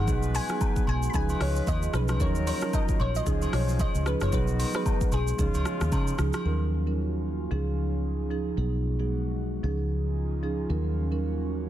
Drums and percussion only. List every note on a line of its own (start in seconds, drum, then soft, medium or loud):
0.08 kick loud
0.08 shaker medium
0.23 shaker soft
0.35 open hi-hat medium
0.35 high agogo medium
0.35 shaker medium
0.49 cross-stick medium
0.49 shaker soft
0.61 kick loud
0.61 low woodblock medium
0.61 shaker medium
0.76 kick loud
0.76 shaker medium
0.87 high agogo medium
1.03 shaker medium
1.14 kick medium
1.14 shaker medium
1.29 high agogo medium
1.29 shaker soft
1.41 cross-stick loud
1.41 open hi-hat medium
1.56 shaker medium
1.67 kick loud
1.67 high agogo medium
1.67 shaker medium
1.83 shaker medium
1.94 cross-stick loud
1.94 shaker soft
2.08 cross-stick loud
2.08 high agogo medium
2.08 shaker soft
2.20 kick loud
2.20 shaker medium
2.35 shaker soft
2.47 open hi-hat medium
2.47 high agogo medium
2.47 shaker medium
2.61 cross-stick medium
2.61 shaker soft
2.73 kick loud
2.73 low woodblock medium
2.73 shaker medium
2.89 kick loud
2.89 shaker medium
3.00 high agogo medium
3.15 shaker medium
3.26 kick medium
3.26 shaker medium
3.42 high agogo medium
3.42 shaker soft
3.53 cross-stick loud
3.53 open hi-hat medium
3.69 shaker medium
3.80 kick loud
3.80 high agogo medium
3.80 shaker medium
3.95 shaker medium
4.06 cross-stick loud
4.06 shaker soft
4.21 cross-stick loud
4.21 high agogo medium
4.21 shaker medium
4.33 kick loud
4.33 shaker medium
4.48 shaker soft
4.59 open hi-hat medium
4.59 high agogo medium
4.59 shaker medium
4.74 cross-stick loud
4.74 shaker medium
4.86 kick medium
4.86 low woodblock medium
4.86 shaker medium
5.01 kick loud
5.01 shaker medium
5.12 high agogo medium
5.12 shaker medium
5.28 shaker medium
5.39 kick loud
5.39 shaker medium
5.54 high agogo medium
5.54 shaker soft
5.65 cross-stick loud
5.65 shaker medium
5.81 cross-stick loud
5.81 shaker medium
5.92 kick loud
5.92 high agogo medium
5.92 low woodblock medium
5.92 shaker medium
6.08 shaker medium
6.19 cross-stick loud
6.19 shaker soft
6.33 cross-stick loud
6.33 high agogo medium
6.33 shaker soft